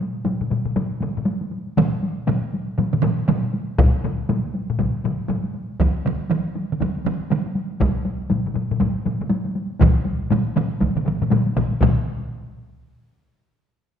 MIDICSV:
0, 0, Header, 1, 2, 480
1, 0, Start_track
1, 0, Tempo, 502092
1, 1692, Time_signature, 4, 2, 24, 8
1, 13384, End_track
2, 0, Start_track
2, 0, Title_t, "Taiko and cinematic ensemble drums"
2, 8, Note_on_c, 9, 48, 52
2, 103, Note_off_c, 9, 48, 0
2, 149, Note_on_c, 9, 48, 22
2, 239, Note_off_c, 9, 48, 0
2, 239, Note_on_c, 9, 48, 69
2, 249, Note_on_c, 9, 45, 65
2, 335, Note_off_c, 9, 48, 0
2, 344, Note_off_c, 9, 45, 0
2, 389, Note_on_c, 9, 48, 21
2, 393, Note_on_c, 9, 45, 65
2, 482, Note_off_c, 9, 48, 0
2, 482, Note_on_c, 9, 48, 60
2, 489, Note_off_c, 9, 45, 0
2, 489, Note_on_c, 9, 45, 72
2, 577, Note_off_c, 9, 48, 0
2, 585, Note_off_c, 9, 45, 0
2, 625, Note_on_c, 9, 45, 70
2, 634, Note_on_c, 9, 48, 21
2, 721, Note_off_c, 9, 45, 0
2, 725, Note_off_c, 9, 48, 0
2, 725, Note_on_c, 9, 48, 63
2, 730, Note_on_c, 9, 45, 92
2, 821, Note_off_c, 9, 48, 0
2, 826, Note_off_c, 9, 45, 0
2, 874, Note_on_c, 9, 48, 22
2, 961, Note_off_c, 9, 48, 0
2, 961, Note_on_c, 9, 48, 58
2, 977, Note_on_c, 9, 45, 79
2, 1056, Note_off_c, 9, 48, 0
2, 1072, Note_off_c, 9, 45, 0
2, 1109, Note_on_c, 9, 48, 24
2, 1120, Note_on_c, 9, 45, 69
2, 1198, Note_off_c, 9, 48, 0
2, 1198, Note_on_c, 9, 48, 69
2, 1215, Note_off_c, 9, 45, 0
2, 1294, Note_off_c, 9, 48, 0
2, 1349, Note_on_c, 9, 48, 43
2, 1445, Note_off_c, 9, 48, 0
2, 1448, Note_on_c, 9, 48, 45
2, 1544, Note_off_c, 9, 48, 0
2, 1597, Note_on_c, 9, 48, 21
2, 1693, Note_off_c, 9, 48, 0
2, 1694, Note_on_c, 9, 45, 94
2, 1695, Note_on_c, 9, 48, 70
2, 1702, Note_on_c, 9, 47, 116
2, 1789, Note_off_c, 9, 45, 0
2, 1790, Note_off_c, 9, 48, 0
2, 1797, Note_off_c, 9, 47, 0
2, 1834, Note_on_c, 9, 48, 24
2, 1930, Note_off_c, 9, 48, 0
2, 1938, Note_on_c, 9, 48, 52
2, 2033, Note_off_c, 9, 48, 0
2, 2082, Note_on_c, 9, 48, 23
2, 2171, Note_off_c, 9, 48, 0
2, 2171, Note_on_c, 9, 48, 74
2, 2175, Note_on_c, 9, 47, 100
2, 2178, Note_on_c, 9, 45, 84
2, 2267, Note_off_c, 9, 48, 0
2, 2271, Note_off_c, 9, 47, 0
2, 2274, Note_off_c, 9, 45, 0
2, 2322, Note_on_c, 9, 48, 21
2, 2418, Note_off_c, 9, 48, 0
2, 2424, Note_on_c, 9, 48, 50
2, 2520, Note_off_c, 9, 48, 0
2, 2568, Note_on_c, 9, 48, 22
2, 2655, Note_on_c, 9, 47, 68
2, 2662, Note_on_c, 9, 45, 75
2, 2663, Note_off_c, 9, 48, 0
2, 2663, Note_on_c, 9, 48, 71
2, 2751, Note_off_c, 9, 47, 0
2, 2758, Note_off_c, 9, 45, 0
2, 2759, Note_off_c, 9, 48, 0
2, 2801, Note_on_c, 9, 47, 74
2, 2803, Note_on_c, 9, 45, 71
2, 2813, Note_on_c, 9, 48, 23
2, 2893, Note_off_c, 9, 47, 0
2, 2893, Note_on_c, 9, 47, 104
2, 2899, Note_off_c, 9, 45, 0
2, 2900, Note_on_c, 9, 45, 106
2, 2908, Note_off_c, 9, 48, 0
2, 2913, Note_on_c, 9, 48, 56
2, 2989, Note_off_c, 9, 47, 0
2, 2995, Note_off_c, 9, 45, 0
2, 3008, Note_off_c, 9, 48, 0
2, 3050, Note_on_c, 9, 48, 22
2, 3134, Note_on_c, 9, 47, 97
2, 3141, Note_off_c, 9, 48, 0
2, 3141, Note_on_c, 9, 45, 98
2, 3141, Note_on_c, 9, 48, 66
2, 3230, Note_off_c, 9, 47, 0
2, 3237, Note_off_c, 9, 45, 0
2, 3237, Note_off_c, 9, 48, 0
2, 3284, Note_on_c, 9, 48, 46
2, 3376, Note_off_c, 9, 48, 0
2, 3376, Note_on_c, 9, 48, 49
2, 3471, Note_off_c, 9, 48, 0
2, 3527, Note_on_c, 9, 48, 23
2, 3620, Note_off_c, 9, 48, 0
2, 3620, Note_on_c, 9, 41, 126
2, 3620, Note_on_c, 9, 48, 64
2, 3621, Note_on_c, 9, 45, 106
2, 3715, Note_off_c, 9, 41, 0
2, 3716, Note_off_c, 9, 45, 0
2, 3716, Note_off_c, 9, 48, 0
2, 3863, Note_on_c, 9, 48, 50
2, 3866, Note_on_c, 9, 45, 91
2, 3958, Note_off_c, 9, 48, 0
2, 3962, Note_off_c, 9, 45, 0
2, 4006, Note_on_c, 9, 48, 23
2, 4102, Note_off_c, 9, 48, 0
2, 4102, Note_on_c, 9, 48, 68
2, 4106, Note_on_c, 9, 45, 90
2, 4198, Note_off_c, 9, 48, 0
2, 4202, Note_off_c, 9, 45, 0
2, 4250, Note_on_c, 9, 48, 24
2, 4346, Note_off_c, 9, 48, 0
2, 4347, Note_on_c, 9, 48, 51
2, 4443, Note_off_c, 9, 48, 0
2, 4491, Note_on_c, 9, 45, 70
2, 4494, Note_on_c, 9, 48, 22
2, 4582, Note_off_c, 9, 48, 0
2, 4582, Note_on_c, 9, 48, 65
2, 4584, Note_off_c, 9, 45, 0
2, 4584, Note_on_c, 9, 45, 97
2, 4587, Note_on_c, 9, 41, 65
2, 4678, Note_off_c, 9, 48, 0
2, 4679, Note_off_c, 9, 45, 0
2, 4683, Note_off_c, 9, 41, 0
2, 4730, Note_on_c, 9, 48, 20
2, 4821, Note_off_c, 9, 48, 0
2, 4821, Note_on_c, 9, 48, 57
2, 4829, Note_on_c, 9, 45, 100
2, 4917, Note_off_c, 9, 48, 0
2, 4924, Note_off_c, 9, 45, 0
2, 4972, Note_on_c, 9, 48, 23
2, 5053, Note_off_c, 9, 48, 0
2, 5053, Note_on_c, 9, 48, 66
2, 5063, Note_on_c, 9, 45, 93
2, 5148, Note_off_c, 9, 48, 0
2, 5158, Note_off_c, 9, 45, 0
2, 5198, Note_on_c, 9, 48, 43
2, 5294, Note_off_c, 9, 48, 0
2, 5298, Note_on_c, 9, 48, 44
2, 5394, Note_off_c, 9, 48, 0
2, 5443, Note_on_c, 9, 48, 22
2, 5539, Note_off_c, 9, 48, 0
2, 5543, Note_on_c, 9, 48, 60
2, 5545, Note_on_c, 9, 41, 88
2, 5557, Note_on_c, 9, 47, 106
2, 5639, Note_off_c, 9, 48, 0
2, 5641, Note_off_c, 9, 41, 0
2, 5653, Note_off_c, 9, 47, 0
2, 5688, Note_on_c, 9, 48, 21
2, 5783, Note_off_c, 9, 48, 0
2, 5784, Note_on_c, 9, 48, 54
2, 5791, Note_on_c, 9, 47, 102
2, 5879, Note_off_c, 9, 48, 0
2, 5887, Note_off_c, 9, 47, 0
2, 5927, Note_on_c, 9, 48, 21
2, 6022, Note_off_c, 9, 48, 0
2, 6026, Note_on_c, 9, 48, 65
2, 6029, Note_on_c, 9, 47, 100
2, 6121, Note_off_c, 9, 48, 0
2, 6125, Note_off_c, 9, 47, 0
2, 6164, Note_on_c, 9, 48, 24
2, 6260, Note_off_c, 9, 48, 0
2, 6264, Note_on_c, 9, 48, 55
2, 6360, Note_off_c, 9, 48, 0
2, 6426, Note_on_c, 9, 47, 66
2, 6504, Note_on_c, 9, 48, 64
2, 6509, Note_on_c, 9, 41, 66
2, 6519, Note_off_c, 9, 47, 0
2, 6519, Note_on_c, 9, 47, 96
2, 6599, Note_off_c, 9, 48, 0
2, 6605, Note_off_c, 9, 41, 0
2, 6614, Note_off_c, 9, 47, 0
2, 6654, Note_on_c, 9, 48, 24
2, 6737, Note_off_c, 9, 48, 0
2, 6737, Note_on_c, 9, 48, 58
2, 6756, Note_on_c, 9, 47, 106
2, 6833, Note_off_c, 9, 48, 0
2, 6852, Note_off_c, 9, 47, 0
2, 6891, Note_on_c, 9, 48, 25
2, 6983, Note_off_c, 9, 48, 0
2, 6983, Note_on_c, 9, 48, 67
2, 6994, Note_on_c, 9, 47, 98
2, 7078, Note_off_c, 9, 48, 0
2, 7090, Note_off_c, 9, 47, 0
2, 7128, Note_on_c, 9, 48, 48
2, 7220, Note_off_c, 9, 48, 0
2, 7220, Note_on_c, 9, 48, 54
2, 7315, Note_off_c, 9, 48, 0
2, 7367, Note_on_c, 9, 48, 24
2, 7457, Note_off_c, 9, 48, 0
2, 7457, Note_on_c, 9, 48, 68
2, 7462, Note_on_c, 9, 41, 99
2, 7463, Note_on_c, 9, 45, 93
2, 7553, Note_off_c, 9, 48, 0
2, 7558, Note_off_c, 9, 41, 0
2, 7558, Note_off_c, 9, 45, 0
2, 7597, Note_on_c, 9, 48, 24
2, 7693, Note_off_c, 9, 48, 0
2, 7695, Note_on_c, 9, 48, 55
2, 7790, Note_off_c, 9, 48, 0
2, 7838, Note_on_c, 9, 48, 22
2, 7933, Note_off_c, 9, 48, 0
2, 7933, Note_on_c, 9, 48, 72
2, 7947, Note_on_c, 9, 45, 71
2, 8028, Note_off_c, 9, 48, 0
2, 8043, Note_off_c, 9, 45, 0
2, 8082, Note_on_c, 9, 48, 26
2, 8091, Note_on_c, 9, 45, 62
2, 8166, Note_off_c, 9, 48, 0
2, 8166, Note_on_c, 9, 48, 56
2, 8180, Note_off_c, 9, 45, 0
2, 8180, Note_on_c, 9, 45, 67
2, 8261, Note_off_c, 9, 48, 0
2, 8276, Note_off_c, 9, 45, 0
2, 8315, Note_on_c, 9, 48, 26
2, 8329, Note_on_c, 9, 45, 73
2, 8411, Note_off_c, 9, 48, 0
2, 8412, Note_on_c, 9, 48, 72
2, 8419, Note_off_c, 9, 45, 0
2, 8419, Note_on_c, 9, 45, 100
2, 8424, Note_on_c, 9, 41, 64
2, 8507, Note_off_c, 9, 48, 0
2, 8515, Note_off_c, 9, 45, 0
2, 8520, Note_off_c, 9, 41, 0
2, 8561, Note_on_c, 9, 48, 24
2, 8656, Note_off_c, 9, 48, 0
2, 8657, Note_on_c, 9, 48, 65
2, 8661, Note_on_c, 9, 45, 77
2, 8752, Note_off_c, 9, 48, 0
2, 8757, Note_off_c, 9, 45, 0
2, 8795, Note_on_c, 9, 48, 28
2, 8805, Note_on_c, 9, 45, 69
2, 8889, Note_off_c, 9, 48, 0
2, 8889, Note_on_c, 9, 48, 80
2, 8901, Note_off_c, 9, 45, 0
2, 8984, Note_off_c, 9, 48, 0
2, 9032, Note_on_c, 9, 48, 51
2, 9128, Note_off_c, 9, 48, 0
2, 9132, Note_on_c, 9, 48, 55
2, 9228, Note_off_c, 9, 48, 0
2, 9274, Note_on_c, 9, 48, 25
2, 9364, Note_off_c, 9, 48, 0
2, 9364, Note_on_c, 9, 48, 72
2, 9376, Note_on_c, 9, 45, 108
2, 9378, Note_on_c, 9, 47, 114
2, 9381, Note_on_c, 9, 41, 99
2, 9460, Note_off_c, 9, 48, 0
2, 9471, Note_off_c, 9, 45, 0
2, 9474, Note_off_c, 9, 47, 0
2, 9477, Note_off_c, 9, 41, 0
2, 9511, Note_on_c, 9, 48, 25
2, 9606, Note_off_c, 9, 48, 0
2, 9606, Note_on_c, 9, 48, 59
2, 9702, Note_off_c, 9, 48, 0
2, 9755, Note_on_c, 9, 48, 28
2, 9851, Note_off_c, 9, 48, 0
2, 9851, Note_on_c, 9, 45, 92
2, 9852, Note_on_c, 9, 48, 79
2, 9865, Note_on_c, 9, 47, 102
2, 9947, Note_off_c, 9, 45, 0
2, 9948, Note_off_c, 9, 48, 0
2, 9960, Note_off_c, 9, 47, 0
2, 10004, Note_on_c, 9, 48, 25
2, 10093, Note_off_c, 9, 48, 0
2, 10093, Note_on_c, 9, 48, 60
2, 10096, Note_on_c, 9, 45, 96
2, 10103, Note_on_c, 9, 47, 108
2, 10189, Note_off_c, 9, 48, 0
2, 10192, Note_off_c, 9, 45, 0
2, 10199, Note_off_c, 9, 47, 0
2, 10238, Note_on_c, 9, 48, 27
2, 10330, Note_off_c, 9, 48, 0
2, 10330, Note_on_c, 9, 48, 75
2, 10331, Note_on_c, 9, 45, 72
2, 10341, Note_on_c, 9, 41, 64
2, 10345, Note_on_c, 9, 47, 67
2, 10426, Note_off_c, 9, 48, 0
2, 10427, Note_off_c, 9, 45, 0
2, 10437, Note_off_c, 9, 41, 0
2, 10440, Note_off_c, 9, 47, 0
2, 10477, Note_on_c, 9, 45, 60
2, 10480, Note_on_c, 9, 48, 23
2, 10485, Note_on_c, 9, 47, 74
2, 10565, Note_off_c, 9, 48, 0
2, 10565, Note_on_c, 9, 48, 59
2, 10571, Note_off_c, 9, 45, 0
2, 10571, Note_on_c, 9, 45, 73
2, 10581, Note_off_c, 9, 47, 0
2, 10589, Note_on_c, 9, 47, 75
2, 10661, Note_off_c, 9, 48, 0
2, 10666, Note_off_c, 9, 45, 0
2, 10685, Note_off_c, 9, 47, 0
2, 10723, Note_on_c, 9, 45, 70
2, 10727, Note_on_c, 9, 47, 71
2, 10807, Note_on_c, 9, 48, 77
2, 10818, Note_off_c, 9, 45, 0
2, 10820, Note_off_c, 9, 47, 0
2, 10820, Note_on_c, 9, 47, 91
2, 10821, Note_on_c, 9, 45, 94
2, 10902, Note_off_c, 9, 48, 0
2, 10916, Note_off_c, 9, 45, 0
2, 10916, Note_off_c, 9, 47, 0
2, 10955, Note_on_c, 9, 48, 52
2, 11051, Note_off_c, 9, 48, 0
2, 11054, Note_on_c, 9, 41, 68
2, 11058, Note_on_c, 9, 47, 103
2, 11062, Note_on_c, 9, 45, 103
2, 11150, Note_off_c, 9, 41, 0
2, 11154, Note_off_c, 9, 47, 0
2, 11158, Note_off_c, 9, 45, 0
2, 11194, Note_on_c, 9, 48, 25
2, 11287, Note_off_c, 9, 48, 0
2, 11287, Note_on_c, 9, 48, 78
2, 11292, Note_on_c, 9, 41, 82
2, 11299, Note_on_c, 9, 45, 109
2, 11306, Note_on_c, 9, 47, 115
2, 11382, Note_off_c, 9, 48, 0
2, 11388, Note_off_c, 9, 41, 0
2, 11395, Note_off_c, 9, 45, 0
2, 11402, Note_off_c, 9, 47, 0
2, 13384, End_track
0, 0, End_of_file